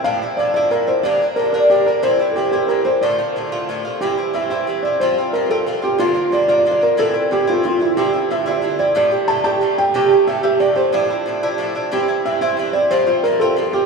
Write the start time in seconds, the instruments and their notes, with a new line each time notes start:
0.04 bouzouki A2 F3 D4 E4, felt piano F5
0.22 bouzouki F3 D4 E4
0.37 bouzouki A2 F3 D4, felt piano D5
0.41 bouzouki E4
0.54 bouzouki A2 F3 D4 E4, felt piano D5
0.71 bouzouki A2 F3 D4 E4, felt piano A#4
0.87 bouzouki F3 D4 E4, felt piano C5
1.03 bouzouki G2 D3 A#3 D4, felt piano D5
1.22 bouzouki D3 A#3 D4
1.36 bouzouki G2 D3 A#3 D4, felt piano A#4
1.53 bouzouki G2 D3 A#3 D4, felt piano A#4
1.70 bouzouki G2 D3 A#3 D4, felt piano G4
1.86 bouzouki D3 A#3 D4, felt piano A#4
2.03 bouzouki G2 E3 C4 E4, felt piano C5
2.19 bouzouki E3 C4 E4
2.31 felt piano A4
2.36 bouzouki G2 E3 C4 E4, felt piano G4
2.52 bouzouki G2 E3 C4 E4, felt piano G4
2.68 bouzouki G2 E3 C4 E4, felt piano A#4
2.85 bouzouki E3 C4 E4, felt piano C5
3.01 bouzouki A2 D3 A3 F4, felt piano D5
3.18 bouzouki D3 A3 F4
3.36 bouzouki A2 D3 A3 F4
3.52 bouzouki A2 D3 A3 F4
3.69 bouzouki A2 D3 A3 F4
3.85 bouzouki D3 A3 F4
4.01 bouzouki G2 E3 C4 E4, felt piano G4
4.18 bouzouki E3 C4 E4
4.34 bouzouki G2 E3 C4 E4, felt piano E5
4.50 bouzouki G2 E3 C4 E4, felt piano E5
4.67 bouzouki G2 E3 C4 E4
4.83 bouzouki C4 E4, felt piano D5
4.87 bouzouki E3
5.00 bouzouki G2 F3 C4 F4, felt piano C5
5.18 bouzouki F3 C4 F4
5.33 bouzouki G2 F3 C4 F4, felt piano A#4
5.50 bouzouki G2 F3 C4 F4, felt piano A4
5.67 bouzouki G2 F3 C4 F4
5.82 bouzouki F3 C4 F4, felt piano G4
5.98 bouzouki G2 D3 A#3 F4, felt piano F4
6.14 bouzouki D3 A#3 F4
6.32 bouzouki G2 D3 A#3 F4, felt piano D5
6.48 bouzouki G2 D3 A#3 F4, felt piano D5
6.58 felt piano D5
6.65 bouzouki G2 D3 A#3 F4
6.71 felt piano D5
6.81 bouzouki D3 A#3 F4, felt piano A#4
6.97 bouzouki A2 E3 C4 E4, felt piano A4
7.14 bouzouki E3 C4 E4
7.31 bouzouki A2 E3 C4 E4, felt piano G4
7.47 bouzouki A2 E3 C4 E4, felt piano F4
7.63 bouzouki A2 E3 C4 E4, felt piano F4
7.79 bouzouki E3 C4 E4, felt piano E4
7.97 bouzouki G2 D3 C4 E4, felt piano G4
8.13 bouzouki D3 C4 E4
8.31 bouzouki G2 D3 C4 E4, felt piano E5
8.46 bouzouki G2 D3 C4 E4, felt piano E5
8.62 bouzouki G2 D3 C4 E4
8.79 bouzouki D3 C4 E4, felt piano D5
8.95 bouzouki A2 D3 A3 G4, felt piano D5
9.11 bouzouki D3 A3 G4
9.28 bouzouki A2 D3 A3 G4, felt piano A5
9.44 bouzouki A2 D3 A3 G4, felt piano A5
9.61 bouzouki A2 D3 A3 G4
9.78 bouzouki D3 A3 G4, felt piano G5
9.94 bouzouki C3 E3 A3 G4, felt piano G4
10.11 bouzouki E3 A3 G4
10.27 bouzouki C3 E3 A3 G4, felt piano E5
10.43 bouzouki C3 E3 A3 G4, felt piano E5
10.60 bouzouki C3 E3 A3 G4, felt piano D5
10.75 bouzouki E3 A3 G4, felt piano C5
10.92 bouzouki A2 F3 D4 E4, felt piano D5
11.10 bouzouki F3 D4 E4
11.26 bouzouki A2 F3 D4 E4
11.43 bouzouki A2 F3 D4 E4
11.58 bouzouki A2 F3 D4 E4
11.75 bouzouki F3 D4 E4
11.91 bouzouki G2 E3 C4 E4, felt piano G4
12.08 bouzouki E3 C4 E4
12.25 bouzouki G2 E3 C4 E4, felt piano E5
12.41 bouzouki G2 E3 C4 E4, felt piano E5
12.57 bouzouki G2 E3 C4 E4
12.73 bouzouki E3 C4 E4, felt piano D5
12.91 bouzouki G2 F3 C4 F4, felt piano C5
13.07 bouzouki F3 C4 F4, felt piano C5
13.23 bouzouki G2 F3 C4 F4, felt piano A#4
13.40 bouzouki G2 F3 C4 F4, felt piano A4
13.57 bouzouki G2 F3 C4 F4
13.73 bouzouki F3 C4 F4, felt piano G4